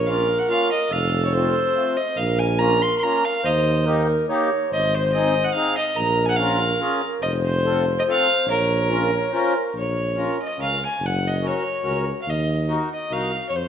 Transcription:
Already playing: tuba A#1, clarinet A#4
0.07 accordion A#3 C#4 F4, fiddle F5
0.39 fiddle F#5
0.48 accordion A#3 C#4 F4, fiddle F5
0.72 fiddle D#5
0.91 tuba F1, clarinet A4, fiddle F5
1.25 fiddle C#5
1.33 accordion A3 C4 F4, fiddle C5
1.74 accordion A3 C4 F4
1.97 fiddle D#5
2.16 tuba A#1, clarinet A#4, fiddle F5
2.39 fiddle G#5
2.58 accordion A#3 C#4 F4, fiddle A#5
2.82 fiddle C6
2.98 fiddle C6
3.02 accordion A#3 C#4 F4, fiddle A#5
3.25 fiddle F5
3.43 tuba D#2, clarinet C5, fiddle D#5
3.86 accordion A#3 D#4 G4, clarinet A#4
4.28 accordion A#3 D#4 G4, clarinet C#5
4.70 tuba G#1, clarinet C5, fiddle D#5
4.94 fiddle C5
5.12 accordion C4 D#4 G#4, fiddle D#5
5.44 fiddle F#5
5.54 accordion C4 D#4 G#4, fiddle F5
5.77 fiddle D#5
5.96 tuba A#1, clarinet A#4, fiddle A#5
6.25 fiddle F#5 G#5
6.36 accordion C#4 F4 A#4, fiddle F5
6.80 accordion C#4 F4 A#4, clarinet G#4
7.03 clarinet A#4
7.22 tuba F1, clarinet C5, fiddle D#5
7.45 fiddle C5
7.65 accordion C4 F4 A4
7.99 fiddle D#5
8.07 accordion C4 F4 A4, fiddle F5
8.46 tuba A#1, fiddle A#4, clarinet C#5
8.90 accordion C#4 F4 A#4, clarinet A#4
9.13 clarinet C#5
9.32 accordion C#4 F4 A#4, clarinet C5
9.56 clarinet A#4
9.74 tuba A#1, fiddle C#5
10.16 accordion C#4 F4 A#4
10.42 fiddle D#5
10.58 tuba C#2, accordion C#4 F4 A#4, fiddle F5
10.85 fiddle G#5
11.00 tuba F#1
11.06 fiddle F#5
11.28 fiddle D#5
11.42 accordion C#4 F#4 A#4
11.47 fiddle C#5
11.83 tuba C#2, accordion C#4 F#4 A#4
12.22 fiddle F5
12.26 tuba D#2, fiddle D#5
12.68 accordion D#4 F#4 A#4
12.93 fiddle D#5
13.10 tuba C2, accordion D#4 F#4 A#4, fiddle F5
13.49 tuba F2, fiddle C#5
13.56 fiddle C5

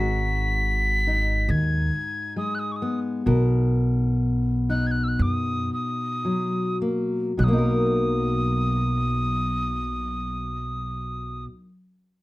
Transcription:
Already playing: upright bass G#1, steel-string acoustic guitar G#2 F#4, tin whistle B6
1.07 steel-string acoustic guitar D#4
1.49 upright bass D#2, tin whistle G#6
2.36 steel-string acoustic guitar G#3, tin whistle D#6
2.55 tin whistle F#6
2.59 tin whistle D#6
2.72 tin whistle C#6
2.76 tin whistle D#6
2.82 steel-string acoustic guitar B3
3.26 upright bass B1, steel-string acoustic guitar B2 A#4
4.70 steel-string acoustic guitar D#4, tin whistle F#6
4.87 tin whistle G#6
4.91 tin whistle F#6
5.04 tin whistle E6
5.08 tin whistle F#6
5.19 upright bass F#2, tin whistle D#6
5.74 tin whistle D#6
6.25 steel-string acoustic guitar F#3
6.82 steel-string acoustic guitar A#3
7.37 upright bass B1, steel-string acoustic guitar B2, tin whistle F#6
7.43 steel-string acoustic guitar F#3, tin whistle D#6
7.48 steel-string acoustic guitar A#3
7.53 steel-string acoustic guitar D#4
7.58 steel-string acoustic guitar A#4

